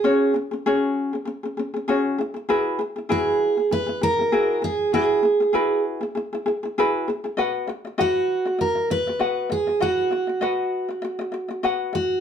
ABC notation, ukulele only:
X:1
M:4/4
L:1/16
Q:"Swing 16ths" 1/4=98
K:Elyd
V:1 name="Ukulele"
[CFGc]2 [CG] [CG] [CFGc]3 [CG] [CG] [CG] [CG] [CG] [CFGc]2 [EG] [EG] | [EFGB]2 [EG] [EG] [EFGB]3 [EG] [EG] [EG] [EG] [EG] [EFG]2 [EG]2 | [EFGB]2 [EG] [EG] [EFGB]3 [EG] [EG] [EG] [EG] [EG] [EFGB]2 [EG] [EG] | [FBdf]2 [Fd] [Fd] [FBdf]3 [Fd] [Fd] [Fd] [Fd] [Fd] [FBdf]2 [Fd] [Fd] |
[FBdf]2 [Fd] [Fd] [FBdf]3 [Fd] [Fd] [Fd] [Fd] [Fd] [FBdf]2 [Fd]2 |]